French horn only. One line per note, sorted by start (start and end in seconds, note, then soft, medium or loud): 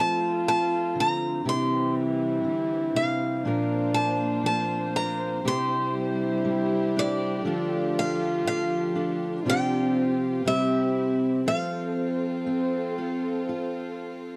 0.00 1.41 F4 loud
1.45 3.47 E4 loud
3.45 5.19 D4 loud
5.45 7.40 E4 loud
7.45 9.46 F4 loud
9.45 10.18 D4 medium
10.38 10.46 B3 medium
10.44 11.44 C4 medium
11.45 14.37 C4 medium